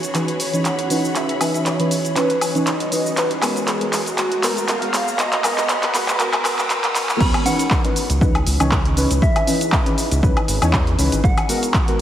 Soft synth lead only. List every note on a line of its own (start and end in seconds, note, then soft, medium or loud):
0.00 0.16 C#5 loud
0.15 0.41 B4 loud
0.40 0.67 C#5 loud
0.65 1.17 F#5 loud
1.15 1.67 E5 loud
1.66 2.16 C#5 loud
2.16 2.43 B4 loud
2.41 2.68 C#5 loud
2.66 3.18 D#5 loud
3.17 3.69 B4 loud
3.67 4.17 G#4 medium
4.18 4.44 F#4 medium
4.43 4.70 A#4 medium
4.68 5.20 F5 loud
5.19 5.71 D#5 loud
5.69 6.19 B4 medium
6.20 6.43 A#4 medium
6.45 6.56 B4 medium